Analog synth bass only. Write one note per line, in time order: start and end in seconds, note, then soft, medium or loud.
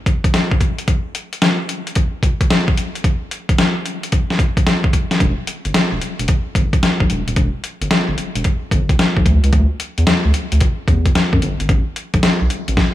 5.20 5.35 E1 loud
5.65 5.73 G1 loud
5.92 6.00 E1 medium
6.19 6.27 E1 medium
6.55 6.77 G1 medium
7.01 7.08 B1 medium
7.10 7.24 E1 loud
7.28 7.35 D#1 loud
7.37 7.51 E1 loud
7.81 7.89 G1 loud
8.08 8.16 G1 medium
8.36 8.43 E1 loud
8.72 8.93 G1 loud
9.17 9.24 B1 medium
9.26 9.40 D2 loud
9.44 9.51 C#2 medium
9.53 9.67 D2 loud
9.98 10.05 E2 medium
10.25 10.32 D2 medium
10.52 10.59 D2 medium
10.88 11.09 E2 medium
11.33 11.40 F#2 medium
11.42 11.56 G1 loud
11.60 11.67 G#1 medium
11.69 11.83 A1 loud
12.14 12.21 B1 medium
12.41 12.48 B1 medium
12.68 12.75 A1 loud